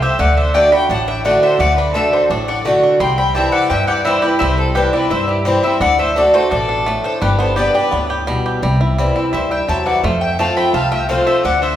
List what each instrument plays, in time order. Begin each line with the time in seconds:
Already playing: upright bass C2, steel-string acoustic guitar C3, five-string banjo A3
0.02 five-string banjo G4, fiddle C5, mandolin E5
0.19 upright bass D2, steel-string acoustic guitar D3, five-string banjo A3, fiddle D5, mandolin F#5
0.37 five-string banjo D4, fiddle C5, mandolin E5
0.54 steel-string acoustic guitar D3 A3 D4 F#4, five-string banjo A3, fiddle D5, mandolin G5
0.72 five-string banjo D4, steel-string acoustic guitar D4 F#4, fiddle G5, mandolin B5
0.89 upright bass A1, steel-string acoustic guitar A2, five-string banjo D4, fiddle F#5, mandolin A5
1.08 five-string banjo D4, fiddle E5, mandolin G5
1.25 steel-string acoustic guitar D3 A3 D4 F#4, five-string banjo A3, fiddle D5, mandolin F#5
1.43 five-string banjo D4, fiddle C5, mandolin E5
1.59 upright bass D2, steel-string acoustic guitar D3, five-string banjo A3, fiddle D5, mandolin F#5
1.76 five-string banjo D4, fiddle B4, mandolin D5
1.94 steel-string acoustic guitar D3 A3 D4 F#4, five-string banjo A3, fiddle A4, mandolin E5
2.12 five-string banjo D4, fiddle A4, mandolin C5
2.28 upright bass A1, steel-string acoustic guitar A2, five-string banjo D4, fiddle A4, mandolin D5
2.47 five-string banjo D4, fiddle D5, mandolin F#5
2.65 steel-string acoustic guitar D3 A3 D4 F#4, five-string banjo A3
2.83 five-string banjo D4
3.00 upright bass C2, steel-string acoustic guitar C3, five-string banjo G3, fiddle G5, mandolin C6
3.17 five-string banjo C4, fiddle G5, mandolin B5
3.35 steel-string acoustic guitar E3 G3 C4 E4, five-string banjo G4, fiddle E5, mandolin A5
3.52 five-string banjo E4, fiddle D5, mandolin F#5
3.70 upright bass G2, steel-string acoustic guitar G2, five-string banjo C4, fiddle E5, mandolin G5
3.87 five-string banjo G4, fiddle D5, mandolin F#5
4.05 steel-string acoustic guitar E3 G3 C4 E4, five-string banjo G3, fiddle C5, mandolin E5
4.22 steel-string acoustic guitar C4 E4, five-string banjo G4, fiddle B4, mandolin D5
4.39 upright bass C2, steel-string acoustic guitar C3, five-string banjo G3, fiddle C5, mandolin E5
4.58 fiddle A4, mandolin C5
4.75 steel-string acoustic guitar E3 G3 C4 E4, five-string banjo G4, fiddle G4, mandolin B4
4.93 five-string banjo G3, steel-string acoustic guitar C4 E4, fiddle B4, mandolin D5
5.10 upright bass G2, steel-string acoustic guitar G2, five-string banjo E4, fiddle C5, mandolin E5
5.28 five-string banjo G3, fiddle E4, mandolin G4
5.45 steel-string acoustic guitar E3 G3 C4 E4, five-string banjo C4, fiddle G4, mandolin C5
5.63 five-string banjo G3, steel-string acoustic guitar C4 E4, fiddle C5, mandolin E5
5.80 upright bass D2, steel-string acoustic guitar D3, five-string banjo D4, fiddle D5, mandolin F#5
5.99 five-string banjo A3, fiddle C5, mandolin E5
6.16 steel-string acoustic guitar D3 A3 D4 F#4, five-string banjo D4, fiddle A4, mandolin D5
6.34 five-string banjo A3, steel-string acoustic guitar D4 F#4, fiddle A4, mandolin C5
6.51 upright bass A1, steel-string acoustic guitar B2, five-string banjo D4, fiddle A4, mandolin D5
6.69 five-string banjo D4
6.86 steel-string acoustic guitar A2, five-string banjo A3
7.04 five-string banjo D4, fiddle A4, mandolin C5
7.22 upright bass G1, steel-string acoustic guitar G2, five-string banjo G3, fiddle G4, mandolin B4
7.39 five-string banjo B3, fiddle A4, mandolin C5
7.56 steel-string acoustic guitar G3 B3 D4 G4, five-string banjo G4, fiddle B4, mandolin D5
7.75 five-string banjo D4, steel-string acoustic guitar D4 G4, fiddle B4, mandolin D5
7.91 upright bass D2, steel-string acoustic guitar A2, five-string banjo B3
8.10 five-string banjo G4
8.27 steel-string acoustic guitar B2, five-string banjo G3
8.46 five-string banjo G4
8.62 upright bass C2, steel-string acoustic guitar C3, five-string banjo G3
8.81 five-string banjo E4
8.98 steel-string acoustic guitar E3 G3 C4 E4, five-string banjo G3
9.16 five-string banjo C4, steel-string acoustic guitar C4 E4
9.33 upright bass D2, steel-string acoustic guitar G2, five-string banjo E4, fiddle C5, mandolin E5
9.51 five-string banjo G3, fiddle E5, mandolin G5
9.68 upright bass E2, steel-string acoustic guitar F#3, five-string banjo C4, fiddle E5, mandolin A5
9.86 five-string banjo E3, fiddle D5, mandolin F#5
10.03 upright bass F2, steel-string acoustic guitar F2, five-string banjo A3, fiddle C5, mandolin F5
10.21 fiddle E5, mandolin G5
10.39 steel-string acoustic guitar F3 A3 C4 F4, five-string banjo A3, fiddle F5, mandolin A5
10.57 five-string banjo C4, fiddle G5, mandolin B5
10.73 upright bass C2, steel-string acoustic guitar C3, five-string banjo F4, fiddle F5, mandolin A5
10.92 five-string banjo A3, fiddle E5, mandolin G5
11.09 steel-string acoustic guitar F3 A3 C4 F4, five-string banjo C4, fiddle C5, mandolin F5
11.26 five-string banjo F3, fiddle C5, mandolin E5
11.43 upright bass D2, steel-string acoustic guitar D3, five-string banjo D4, fiddle D5, mandolin F#5
11.61 five-string banjo D4, fiddle C5, mandolin E5